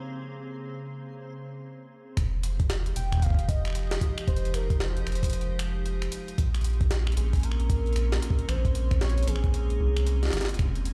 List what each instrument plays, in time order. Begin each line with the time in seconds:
Already playing: ambient pad C#3 A#3 C4 G#4, synth texture C4 C5
2.17 analog synth bass F1, ambient pad F3 G#3 D#4 G4, finger snap, kick, closed hi-hat
2.43 closed hi-hat
2.60 kick, closed hi-hat
2.70 finger snap, snare, closed hi-hat
2.86 closed hi-hat
2.96 analog synth bass F1, soft synth lead G5, closed hi-hat
3.12 finger snap, kick, closed hi-hat
3.15 kick
3.17 kick
3.20 kick
3.22 soft synth lead F5, kick, closed hi-hat
3.26 kick
3.30 kick
3.34 kick
3.39 closed hi-hat
3.49 soft synth lead D#5, kick, closed hi-hat
3.65 finger snap, closed hi-hat
3.68 finger snap
3.70 finger snap
3.73 finger snap
3.75 finger snap, closed hi-hat
3.79 finger snap
3.83 finger snap
3.87 finger snap
3.91 snare, closed hi-hat
4.01 kick, closed hi-hat
4.18 finger snap, closed hi-hat
4.28 analog synth bass F1, soft synth lead C5, kick, closed hi-hat
4.36 closed hi-hat
4.45 closed hi-hat
4.54 soft synth lead A#4, finger snap, closed hi-hat
4.70 kick, closed hi-hat
4.80 soft synth lead C5, snare
4.97 closed hi-hat
5.07 analog synth bass F1, finger snap, closed hi-hat
5.12 closed hi-hat
5.15 closed hi-hat
5.23 kick, closed hi-hat
5.30 closed hi-hat
5.33 closed hi-hat
5.41 closed hi-hat
5.59 finger snap, closed hi-hat
5.86 closed hi-hat
6.02 finger snap, closed hi-hat
6.12 closed hi-hat
6.28 closed hi-hat
6.38 analog synth bass A#1, ambient pad A#3 C4 C#4, kick, closed hi-hat
6.54 finger snap, closed hi-hat
6.61 closed hi-hat
6.64 closed hi-hat
6.70 closed hi-hat
6.81 kick, closed hi-hat
6.91 snare, closed hi-hat
7.07 finger snap
7.12 closed hi-hat
7.17 analog synth bass A#1, soft synth lead G#4, closed hi-hat
7.33 kick, closed hi-hat
7.35 closed hi-hat
7.37 closed hi-hat
7.39 closed hi-hat
7.41 closed hi-hat
7.43 soft synth lead A#4, closed hi-hat
7.52 finger snap
7.60 closed hi-hat
7.70 kick, closed hi-hat
7.86 closed hi-hat
7.93 finger snap, closed hi-hat
7.96 closed hi-hat
8.12 snare
8.22 closed hi-hat
8.30 kick
8.39 closed hi-hat
8.48 analog synth bass A#1, soft synth lead C5, finger snap, closed hi-hat
8.65 kick, closed hi-hat
8.75 closed hi-hat
8.91 finger snap, kick, closed hi-hat
9.01 soft synth lead C#5, snare, closed hi-hat
9.09 closed hi-hat
9.18 closed hi-hat
9.23 closed hi-hat
9.27 analog synth bass A#1, soft synth lead G#4, closed hi-hat
9.36 finger snap
9.44 kick, closed hi-hat
9.54 closed hi-hat
9.70 closed hi-hat
9.80 analog synth bass C2
9.97 finger snap, closed hi-hat
10.07 closed hi-hat
10.23 snare, closed hi-hat
10.25 snare
10.28 snare
10.30 analog synth bass G#1, finger snap, snare
10.33 snare, closed hi-hat
10.37 snare
10.41 snare, closed hi-hat
10.45 snare
10.49 closed hi-hat
10.54 closed hi-hat
10.59 analog synth bass F1, ambient pad D#3 G3 F4, finger snap, kick, closed hi-hat
10.75 closed hi-hat
10.85 closed hi-hat